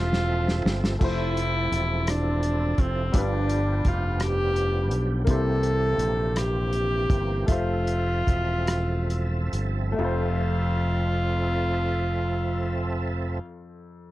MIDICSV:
0, 0, Header, 1, 6, 480
1, 0, Start_track
1, 0, Key_signature, -1, "major"
1, 0, Tempo, 710900
1, 677, Time_signature, 6, 3, 24, 8
1, 3559, Tempo, 737101
1, 4999, Tempo, 809717
1, 5959, Tempo, 884956
1, 6439, Tempo, 916031
1, 8602, End_track
2, 0, Start_track
2, 0, Title_t, "Viola"
2, 0, Program_c, 0, 41
2, 0, Note_on_c, 0, 65, 79
2, 507, Note_off_c, 0, 65, 0
2, 697, Note_on_c, 0, 64, 81
2, 1418, Note_on_c, 0, 62, 77
2, 1428, Note_off_c, 0, 64, 0
2, 1896, Note_on_c, 0, 60, 73
2, 1906, Note_off_c, 0, 62, 0
2, 2137, Note_on_c, 0, 62, 83
2, 2147, Note_off_c, 0, 60, 0
2, 2616, Note_on_c, 0, 65, 76
2, 2626, Note_off_c, 0, 62, 0
2, 2855, Note_on_c, 0, 67, 93
2, 2865, Note_off_c, 0, 65, 0
2, 3388, Note_off_c, 0, 67, 0
2, 3572, Note_on_c, 0, 69, 97
2, 4275, Note_on_c, 0, 67, 92
2, 4285, Note_off_c, 0, 69, 0
2, 4995, Note_on_c, 0, 65, 89
2, 5005, Note_off_c, 0, 67, 0
2, 6194, Note_off_c, 0, 65, 0
2, 6436, Note_on_c, 0, 65, 76
2, 8215, Note_off_c, 0, 65, 0
2, 8602, End_track
3, 0, Start_track
3, 0, Title_t, "Grand piano"
3, 0, Program_c, 1, 0
3, 0, Control_c, 1, 64, 127
3, 0, Note_on_c, 1, 53, 51
3, 0, Note_on_c, 1, 57, 57
3, 0, Note_on_c, 1, 72, 66
3, 0, Note_on_c, 1, 76, 51
3, 642, Note_off_c, 1, 57, 0
3, 650, Note_off_c, 1, 76, 0
3, 657, Note_off_c, 1, 53, 0
3, 666, Note_on_c, 1, 57, 50
3, 677, Note_on_c, 1, 64, 47
3, 686, Note_off_c, 1, 72, 0
3, 687, Control_c, 1, 64, 0
3, 691, Note_on_c, 1, 53, 47
3, 704, Note_on_c, 1, 72, 64
3, 811, Control_c, 1, 64, 127
3, 2085, Note_off_c, 1, 57, 0
3, 2090, Note_off_c, 1, 64, 0
3, 2097, Note_off_c, 1, 53, 0
3, 2104, Note_off_c, 1, 72, 0
3, 2107, Note_on_c, 1, 55, 56
3, 2123, Note_on_c, 1, 62, 47
3, 2124, Note_on_c, 1, 43, 51
3, 2127, Control_c, 1, 64, 0
3, 2133, Note_on_c, 1, 65, 47
3, 2147, Note_on_c, 1, 71, 62
3, 2235, Control_c, 1, 64, 127
3, 2815, Note_off_c, 1, 43, 0
3, 3528, Note_off_c, 1, 55, 0
3, 3536, Note_off_c, 1, 62, 0
3, 3541, Note_off_c, 1, 65, 0
3, 3542, Note_on_c, 1, 58, 54
3, 3548, Note_off_c, 1, 71, 0
3, 3558, Note_on_c, 1, 64, 50
3, 3562, Note_on_c, 1, 48, 57
3, 3567, Control_c, 1, 64, 0
3, 3570, Note_on_c, 1, 67, 49
3, 3581, Note_on_c, 1, 72, 54
3, 3676, Control_c, 1, 64, 127
3, 4241, Note_off_c, 1, 48, 0
3, 4964, Note_off_c, 1, 58, 0
3, 4972, Note_off_c, 1, 64, 0
3, 4978, Note_off_c, 1, 67, 0
3, 4983, Note_off_c, 1, 72, 0
3, 4984, Note_on_c, 1, 57, 54
3, 4998, Note_on_c, 1, 76, 49
3, 5007, Control_c, 1, 64, 0
3, 5009, Note_on_c, 1, 65, 49
3, 5021, Note_on_c, 1, 72, 57
3, 5101, Control_c, 1, 64, 127
3, 6395, Note_off_c, 1, 57, 0
3, 6403, Note_on_c, 1, 57, 63
3, 6418, Note_off_c, 1, 76, 0
3, 6423, Note_off_c, 1, 65, 0
3, 6426, Note_on_c, 1, 76, 53
3, 6428, Note_off_c, 1, 72, 0
3, 6438, Note_on_c, 1, 41, 62
3, 6446, Control_c, 1, 64, 0
3, 6448, Note_on_c, 1, 65, 60
3, 6469, Note_on_c, 1, 72, 68
3, 6530, Control_c, 1, 64, 127
3, 8183, Note_off_c, 1, 57, 0
3, 8205, Note_off_c, 1, 76, 0
3, 8217, Note_off_c, 1, 41, 0
3, 8227, Note_off_c, 1, 65, 0
3, 8248, Note_off_c, 1, 72, 0
3, 8602, End_track
4, 0, Start_track
4, 0, Title_t, "Tonewheel organ"
4, 0, Program_c, 2, 16
4, 0, Note_on_c, 2, 53, 53
4, 0, Note_on_c, 2, 60, 47
4, 0, Note_on_c, 2, 69, 59
4, 0, Note_on_c, 2, 76, 46
4, 652, Note_off_c, 2, 76, 0
4, 653, Note_off_c, 2, 53, 0
4, 653, Note_off_c, 2, 60, 0
4, 654, Note_off_c, 2, 69, 0
4, 671, Note_on_c, 2, 60, 46
4, 671, Note_on_c, 2, 69, 61
4, 675, Note_on_c, 2, 53, 51
4, 682, Note_on_c, 2, 64, 50
4, 2087, Note_off_c, 2, 60, 0
4, 2087, Note_off_c, 2, 69, 0
4, 2089, Note_off_c, 2, 53, 0
4, 2093, Note_off_c, 2, 64, 0
4, 2106, Note_on_c, 2, 59, 45
4, 2114, Note_on_c, 2, 53, 54
4, 2115, Note_on_c, 2, 62, 47
4, 2115, Note_on_c, 2, 65, 48
4, 2155, Note_on_c, 2, 67, 59
4, 2160, Note_off_c, 2, 65, 0
4, 3528, Note_off_c, 2, 59, 0
4, 3532, Note_off_c, 2, 53, 0
4, 3533, Note_off_c, 2, 62, 0
4, 3552, Note_off_c, 2, 67, 0
4, 3579, Note_on_c, 2, 60, 52
4, 3581, Note_on_c, 2, 50, 38
4, 3581, Note_on_c, 2, 58, 46
4, 3582, Note_on_c, 2, 67, 58
4, 3613, Note_off_c, 2, 50, 0
4, 3625, Note_on_c, 2, 52, 51
4, 4982, Note_off_c, 2, 60, 0
4, 4983, Note_off_c, 2, 58, 0
4, 4984, Note_off_c, 2, 67, 0
4, 5002, Note_on_c, 2, 60, 42
4, 5002, Note_on_c, 2, 69, 54
4, 5005, Note_off_c, 2, 52, 0
4, 5006, Note_on_c, 2, 53, 49
4, 5006, Note_on_c, 2, 76, 45
4, 6420, Note_off_c, 2, 60, 0
4, 6420, Note_off_c, 2, 69, 0
4, 6421, Note_off_c, 2, 53, 0
4, 6421, Note_off_c, 2, 76, 0
4, 6442, Note_on_c, 2, 76, 58
4, 6443, Note_on_c, 2, 60, 52
4, 6447, Note_on_c, 2, 53, 61
4, 6447, Note_on_c, 2, 69, 66
4, 8221, Note_off_c, 2, 76, 0
4, 8222, Note_off_c, 2, 60, 0
4, 8226, Note_off_c, 2, 53, 0
4, 8226, Note_off_c, 2, 69, 0
4, 8602, End_track
5, 0, Start_track
5, 0, Title_t, "Fingered electric bass"
5, 0, Program_c, 3, 33
5, 0, Note_on_c, 3, 28, 80
5, 413, Note_off_c, 3, 28, 0
5, 441, Note_on_c, 3, 31, 79
5, 660, Note_off_c, 3, 31, 0
5, 684, Note_on_c, 3, 29, 82
5, 1133, Note_off_c, 3, 29, 0
5, 1160, Note_on_c, 3, 28, 78
5, 1852, Note_off_c, 3, 28, 0
5, 1878, Note_on_c, 3, 29, 72
5, 2099, Note_off_c, 3, 29, 0
5, 2121, Note_on_c, 3, 31, 85
5, 2573, Note_off_c, 3, 31, 0
5, 2601, Note_on_c, 3, 29, 88
5, 3320, Note_off_c, 3, 29, 0
5, 3320, Note_on_c, 3, 35, 75
5, 3541, Note_off_c, 3, 35, 0
5, 3559, Note_on_c, 3, 36, 82
5, 4002, Note_off_c, 3, 36, 0
5, 4022, Note_on_c, 3, 34, 79
5, 4721, Note_off_c, 3, 34, 0
5, 4747, Note_on_c, 3, 31, 75
5, 4977, Note_off_c, 3, 31, 0
5, 5000, Note_on_c, 3, 29, 80
5, 5443, Note_off_c, 3, 29, 0
5, 5468, Note_on_c, 3, 28, 80
5, 6174, Note_off_c, 3, 28, 0
5, 6192, Note_on_c, 3, 31, 69
5, 6418, Note_off_c, 3, 31, 0
5, 6439, Note_on_c, 3, 29, 76
5, 8218, Note_off_c, 3, 29, 0
5, 8602, End_track
6, 0, Start_track
6, 0, Title_t, "Drums"
6, 87, Note_on_c, 9, 38, 50
6, 155, Note_off_c, 9, 38, 0
6, 326, Note_on_c, 9, 38, 60
6, 393, Note_off_c, 9, 38, 0
6, 447, Note_on_c, 9, 38, 83
6, 515, Note_off_c, 9, 38, 0
6, 566, Note_on_c, 9, 38, 70
6, 634, Note_off_c, 9, 38, 0
6, 681, Note_on_c, 9, 49, 76
6, 682, Note_on_c, 9, 36, 100
6, 749, Note_off_c, 9, 36, 0
6, 749, Note_off_c, 9, 49, 0
6, 926, Note_on_c, 9, 42, 43
6, 994, Note_off_c, 9, 42, 0
6, 1165, Note_on_c, 9, 42, 46
6, 1232, Note_off_c, 9, 42, 0
6, 1399, Note_on_c, 9, 42, 69
6, 1404, Note_on_c, 9, 37, 105
6, 1466, Note_off_c, 9, 42, 0
6, 1472, Note_off_c, 9, 37, 0
6, 1639, Note_on_c, 9, 42, 41
6, 1707, Note_off_c, 9, 42, 0
6, 1877, Note_on_c, 9, 42, 39
6, 1878, Note_on_c, 9, 36, 72
6, 1945, Note_off_c, 9, 42, 0
6, 1946, Note_off_c, 9, 36, 0
6, 2118, Note_on_c, 9, 42, 88
6, 2119, Note_on_c, 9, 36, 99
6, 2185, Note_off_c, 9, 42, 0
6, 2187, Note_off_c, 9, 36, 0
6, 2359, Note_on_c, 9, 42, 42
6, 2427, Note_off_c, 9, 42, 0
6, 2598, Note_on_c, 9, 42, 47
6, 2600, Note_on_c, 9, 36, 71
6, 2665, Note_off_c, 9, 42, 0
6, 2667, Note_off_c, 9, 36, 0
6, 2835, Note_on_c, 9, 42, 67
6, 2840, Note_on_c, 9, 37, 96
6, 2902, Note_off_c, 9, 42, 0
6, 2908, Note_off_c, 9, 37, 0
6, 3079, Note_on_c, 9, 42, 38
6, 3147, Note_off_c, 9, 42, 0
6, 3316, Note_on_c, 9, 42, 43
6, 3383, Note_off_c, 9, 42, 0
6, 3558, Note_on_c, 9, 42, 78
6, 3561, Note_on_c, 9, 36, 99
6, 3623, Note_off_c, 9, 42, 0
6, 3626, Note_off_c, 9, 36, 0
6, 3793, Note_on_c, 9, 42, 41
6, 3859, Note_off_c, 9, 42, 0
6, 4028, Note_on_c, 9, 42, 45
6, 4093, Note_off_c, 9, 42, 0
6, 4268, Note_on_c, 9, 42, 71
6, 4273, Note_on_c, 9, 37, 94
6, 4333, Note_off_c, 9, 42, 0
6, 4338, Note_off_c, 9, 37, 0
6, 4507, Note_on_c, 9, 42, 38
6, 4572, Note_off_c, 9, 42, 0
6, 4749, Note_on_c, 9, 36, 77
6, 4750, Note_on_c, 9, 42, 40
6, 4814, Note_off_c, 9, 36, 0
6, 4815, Note_off_c, 9, 42, 0
6, 4997, Note_on_c, 9, 42, 84
6, 4999, Note_on_c, 9, 36, 92
6, 5057, Note_off_c, 9, 42, 0
6, 5058, Note_off_c, 9, 36, 0
6, 5230, Note_on_c, 9, 42, 42
6, 5290, Note_off_c, 9, 42, 0
6, 5468, Note_on_c, 9, 36, 69
6, 5470, Note_on_c, 9, 42, 44
6, 5471, Note_on_c, 9, 37, 22
6, 5527, Note_off_c, 9, 36, 0
6, 5530, Note_off_c, 9, 37, 0
6, 5530, Note_off_c, 9, 42, 0
6, 5706, Note_on_c, 9, 42, 66
6, 5710, Note_on_c, 9, 37, 97
6, 5765, Note_off_c, 9, 42, 0
6, 5770, Note_off_c, 9, 37, 0
6, 5958, Note_on_c, 9, 42, 36
6, 6012, Note_off_c, 9, 42, 0
6, 6191, Note_on_c, 9, 42, 42
6, 6245, Note_off_c, 9, 42, 0
6, 8602, End_track
0, 0, End_of_file